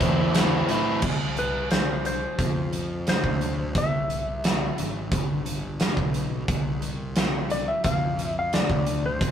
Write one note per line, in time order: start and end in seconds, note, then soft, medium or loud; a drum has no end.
0.00 0.61 E2 loud
0.00 0.33 A2 medium
0.00 0.34 E3 medium
0.00 0.35 A3 medium
0.00 0.35 C4 loud
0.00 0.35 E4 loud
0.00 0.32 C5 medium
0.00 kick medium
0.00 closed hi-hat medium
0.34 0.68 A2 medium
0.34 0.69 E3 medium
0.34 0.69 A3 medium
0.34 0.70 C4 medium
0.34 0.70 E4 medium
0.34 snare loud
0.34 closed hi-hat medium
0.69 1.01 A2 medium
0.69 1.00 A2 medium
0.69 1.02 E3 medium
0.69 1.02 A3 medium
0.69 1.02 C4 medium
0.69 1.02 E4 medium
0.69 closed hi-hat medium
1.02 2.24 C2 medium
1.02 kick loud
1.02 crash medium
1.37 1.71 B4 medium
1.37 closed hi-hat medium
1.71 2.05 C5 medium
1.71 snare loud
1.71 closed hi-hat medium
2.05 3.08 C5 medium
2.05 closed hi-hat medium
2.38 3.15 F2 medium
2.38 kick loud
2.38 closed hi-hat medium
2.73 closed hi-hat medium
3.07 3.79 C5 medium
3.07 snare medium
3.07 closed hi-hat medium
3.24 3.75 D2 medium
3.24 kick medium
3.41 closed hi-hat medium
3.75 4.67 C2 medium
3.75 5.09 E5 medium
3.75 kick medium
3.75 closed hi-hat medium
4.10 closed hi-hat soft
4.44 snare loud
4.44 closed hi-hat medium
4.78 5.09 G#1 medium
4.78 closed hi-hat medium
5.11 5.88 G1 medium
5.11 kick loud
5.11 closed hi-hat medium
5.46 closed hi-hat medium
5.80 snare medium
5.80 closed hi-hat medium
5.97 6.43 B1 medium
5.97 kick medium
6.14 closed hi-hat medium
6.48 7.70 C2 medium
6.48 kick loud
6.48 closed hi-hat medium
6.82 closed hi-hat medium
7.16 snare loud
7.16 closed hi-hat medium
7.50 7.69 D5 medium
7.50 closed hi-hat medium
7.68 7.85 E5 medium
7.84 8.61 F2 medium
7.84 8.24 F5 loud
7.84 kick medium
7.84 closed hi-hat medium
8.19 closed hi-hat medium
8.24 8.38 E5 loud
8.39 8.55 F5 medium
8.53 9.06 D5 medium
8.53 snare medium
8.53 closed hi-hat medium
8.70 9.21 D2 medium
8.70 kick medium
8.86 closed hi-hat medium
9.06 9.31 C5 medium
9.21 9.31 C2 medium
9.21 kick loud
9.21 closed hi-hat medium